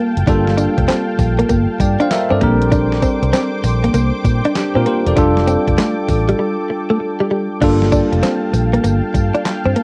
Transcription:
Already playing: tine electric piano G3 A#3 F4 A4, clean electric guitar A#3, analog synth pad F5 G5 A5
0.17 fingered electric bass F#1, closed hi-hat
0.27 fingered electric bass G1, tine electric piano G3 A#3 F4 A4, clean electric guitar D4, kick, closed hi-hat, tambourine
0.47 snare
0.57 clean electric guitar D4, closed hi-hat, tambourine
0.78 fingered electric bass F1, muted clean electric guitar stroke, kick, closed hi-hat
0.88 clean electric guitar C4, snare, clap, closed hi-hat, tambourine
1.19 fingered electric bass A#1, muted clean electric guitar stroke, kick, open hi-hat, tambourine
1.39 clean electric guitar A#3, closed hi-hat
1.49 fingered electric bass G1, clean electric guitar A#3, kick, closed hi-hat, tambourine
1.80 fingered electric bass G2, tine electric piano D5 G5, muted clean electric guitar stroke, kick, closed hi-hat, tambourine
2.00 clean electric guitar D4, tine electric piano C5 F5, closed hi-hat
2.11 tine electric piano A#4 E5, muted clean electric guitar stroke, snare, clap, closed hi-hat, tambourine
2.30 fingered electric bass G2, clean electric guitar C4, tine electric piano A4 D5
2.41 fingered electric bass A#1, tine electric piano G3 C4 D4 A#4, clean electric guitar A#3, analog synth pad C5 G5 D6, kick, closed hi-hat
2.62 closed hi-hat
2.72 clean electric guitar D4, kick, closed hi-hat, tambourine
2.92 snare
3.02 clean electric guitar C4, kick, closed hi-hat, tambourine
3.22 fingered electric bass C2, muted clean electric guitar stroke, closed hi-hat
3.33 clean electric guitar C4, snare, clap, closed hi-hat, tambourine
3.63 fingered electric bass A#1, muted clean electric guitar stroke, open hi-hat, tambourine
3.84 clean electric guitar A#3, closed hi-hat
3.94 fingered electric bass C2, clean electric guitar A#3, closed hi-hat, tambourine
4.25 fingered electric bass A#2, muted clean electric guitar stroke, kick, closed hi-hat, tambourine
4.45 clean electric guitar D4, closed hi-hat
4.55 tine electric piano D4 G4, muted clean electric guitar stroke, snare, clap, closed hi-hat, tambourine
4.75 fingered electric bass A#2, clean electric guitar C4, tine electric piano F4 A#4
4.86 clean electric guitar A#3, tine electric piano G4 C5, closed hi-hat
5.06 fingered electric bass E1, tine electric piano A4 D5, closed hi-hat
5.16 fingered electric bass F1, tine electric piano G3 D4 F4 A4, clean electric guitar D4, analog synth pad A4 D6, kick, closed hi-hat, tambourine
5.37 snare
5.48 clean electric guitar C4, closed hi-hat, tambourine
5.68 fingered electric bass F1, muted clean electric guitar stroke, kick, closed hi-hat
5.78 clean electric guitar A3, snare, clap, closed hi-hat, tambourine
6.09 fingered electric bass A1, muted clean electric guitar stroke, kick, open hi-hat, tambourine
6.29 clean electric guitar G3, closed hi-hat
6.39 clean electric guitar G3
6.70 muted clean electric guitar stroke
6.90 clean electric guitar A3
7.00 muted clean electric guitar stroke
7.20 clean electric guitar G3
7.31 clean electric guitar G3
7.61 fingered electric bass G1, tine electric piano G3 A#3 D4 F4 A4, clean electric guitar D4, analog synth pad F5 G5 A5, kick, closed hi-hat, crash, tambourine
7.82 snare
7.92 clean electric guitar D4, kick, closed hi-hat, tambourine
8.12 fingered electric bass F1, muted clean electric guitar stroke, closed hi-hat
8.23 clean electric guitar C4, snare, clap, closed hi-hat, tambourine
8.53 fingered electric bass A#1, muted clean electric guitar stroke, open hi-hat, tambourine
8.73 clean electric guitar A#3, closed hi-hat
8.84 fingered electric bass G1, clean electric guitar A#3, closed hi-hat, tambourine
9.14 fingered electric bass G2, muted clean electric guitar stroke, kick, closed hi-hat, tambourine
9.35 clean electric guitar D4, closed hi-hat
9.45 muted clean electric guitar stroke, snare, clap, closed hi-hat, tambourine
9.65 fingered electric bass G2, clean electric guitar C4
9.76 clean electric guitar A#3, closed hi-hat

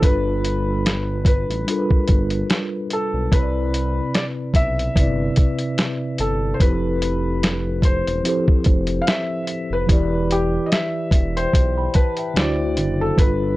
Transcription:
0.01 analog synth bass G1, tine electric piano G3 D4, felt piano B4, kick, closed hi-hat
0.06 tine electric piano A4 B4
0.45 closed hi-hat
0.86 snare, closed hi-hat
1.25 felt piano B4, kick, closed hi-hat
1.49 analog synth bass A1, closed hi-hat
1.66 tine electric piano G3 D4 F4, closed hi-hat
1.71 tine electric piano A4 A#4
1.79 tine electric piano B4
1.91 kick
2.08 analog synth bass G1, kick, closed hi-hat
2.30 closed hi-hat
2.50 snare, closed hi-hat
2.90 felt piano A4, closed hi-hat
3.14 analog synth bass B1
3.31 analog synth bass C2, tine electric piano C3 C4 E4, felt piano B4, kick, closed hi-hat
3.35 tine electric piano B4 C#5
3.43 tine electric piano D5
3.74 closed hi-hat
4.14 felt piano D5, snare, closed hi-hat
4.54 analog synth bass B1, felt piano E5, kick, closed hi-hat
4.79 closed hi-hat
4.95 analog synth bass G1, tine electric piano C3 C4 E4, kick, closed hi-hat
4.99 tine electric piano B4 D5
5.36 kick, closed hi-hat
5.59 closed hi-hat
5.78 snare, closed hi-hat
6.18 analog synth bass G1, felt piano A4, closed hi-hat
6.54 felt piano C5
6.59 analog synth bass F1, tine electric piano F3 C4 E4 G4, felt piano B4, kick, closed hi-hat
6.64 tine electric piano A4 B4
7.02 closed hi-hat
7.43 snare, closed hi-hat
7.82 felt piano C5, kick, closed hi-hat
8.07 analog synth bass E1, closed hi-hat
8.23 tine electric piano F3 C4 E4 G4, closed hi-hat
8.28 tine electric piano A4 C5
8.48 kick
8.64 analog synth bass F1, kick, closed hi-hat
8.87 closed hi-hat
9.02 felt piano F5
9.07 felt piano E5, snare, closed hi-hat
9.47 closed hi-hat
9.71 analog synth bass F1, felt piano B4
9.87 analog synth bass E1, tine electric piano E3 E4 G4, kick, closed hi-hat
9.91 tine electric piano B4 D5
10.31 felt piano G4, closed hi-hat
10.66 felt piano D#5
10.72 felt piano E5, snare, closed hi-hat
11.11 analog synth bass E1, kick, closed hi-hat
11.37 felt piano C5, tine electric piano E5 G5, closed hi-hat
11.53 analog synth bass B1, kick, closed hi-hat
11.78 tine electric piano G5 B5
11.94 felt piano B4, tine electric piano A5, kick, closed hi-hat
12.17 tine electric piano E5 G5, closed hi-hat
12.34 analog synth bass D2, tine electric piano D3 D4 E4, felt piano D5, snare, closed hi-hat
12.38 tine electric piano F#4 C5
12.77 analog synth bass F#1, closed hi-hat
13.01 felt piano A4
13.16 analog synth bass G1, tine electric piano G3 D4 F4, felt piano B4, kick, closed hi-hat
13.21 tine electric piano A4 B4

